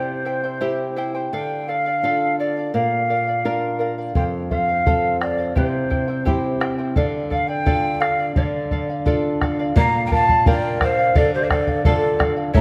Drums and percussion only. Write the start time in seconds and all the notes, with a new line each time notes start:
4.15 bombo low
4.51 bombo low
4.87 bombo low
5.21 bombo rim
5.56 bombo low
5.91 bombo low
6.27 bombo low
6.61 bombo rim
6.96 bombo low
7.31 bombo low
7.66 bombo low
8.02 bombo rim
8.36 bombo low
8.71 bombo low
9.06 bombo low
9.41 bombo rim, bombo low
9.76 bombo low
10.11 bombo low
10.29 bombo low
10.46 bombo low
10.81 bombo rim, bombo low
11.15 bombo low
11.51 bombo rim, bombo low
11.67 bombo low
11.85 bombo low
12.20 bombo rim, bombo low
12.54 bombo low